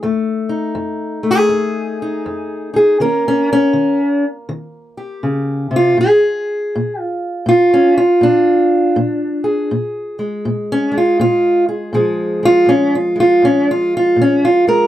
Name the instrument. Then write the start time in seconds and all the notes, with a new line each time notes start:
steel-string acoustic guitar
0.03 F2 A3
0.49 D#4
0.75 F2
1.23 A3
1.31 G#4
1.49 F2 D#4
2.02 D#4
2.26 F2
2.74 D#4 G#4
3.00 D#3 A#3 C#4 A#4
3.28 C#4
3.53 C#4
3.73 D#3
4.49 D#3
4.97 G4
5.23 C#3
5.71 C3
5.76 F4
5.98 A#2 G#4
6.76 A#2
7.01 F4
7.46 A#2 F4
7.74 C#4
7.98 F4
8.21 A#2 D4
8.96 A#2
9.44 G#4
9.71 A#2
10.19 G#3
10.45 A#2
10.72 C#4
10.92 G#3
10.98 F4
11.19 A#2 F4
11.69 G#4
11.93 A#2 F3 G#3 G#4
12.43 G#3 F4
12.66 A#2 C#4
12.95 F4
13.16 G#3
13.20 F4
13.42 A#2 C#4
13.71 F4
13.97 F4
14.16 A#2
14.21 C#4
14.45 F4
14.67 G#3 A#4